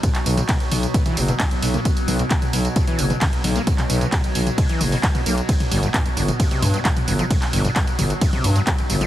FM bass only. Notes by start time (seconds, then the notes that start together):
0.26 B1
0.72 B1
1.17 F#1
1.62 B1
2.08 B1
2.53 B1
2.99 F#1
3.44 B1
3.90 B1
4.35 B1
4.81 F#1
5.26 B1
5.71 G1
6.17 G1
6.62 G2
7.08 G1
7.53 G1
7.99 G1
8.44 G2
8.90 G1